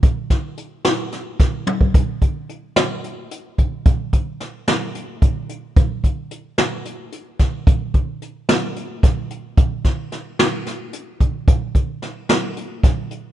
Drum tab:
HH |x-x-x-x-x-x---|x-x-x-x-x-x-x-|x-x-x-x-x-x-x-|x-x-x-x-x-x-x-|
SD |--o---o-o-o---|------o-------|----o-o-------|------o-----o-|
T1 |------------o-|--------------|--------------|--------------|
BD |o-o-------o--o|o-o---------o-|o-o-------o---|o-o---------o-|

HH |x-x-x-x-x-x-x-|x-x-x-x-x-x-x-|x-x-x-x-x-x-x-|
SD |------o---o---|--o-o-o-o-----|----o-o---o---|
T1 |--------------|--------------|--------------|
BD |o-o-------o---|o-o---------o-|o-o-------o---|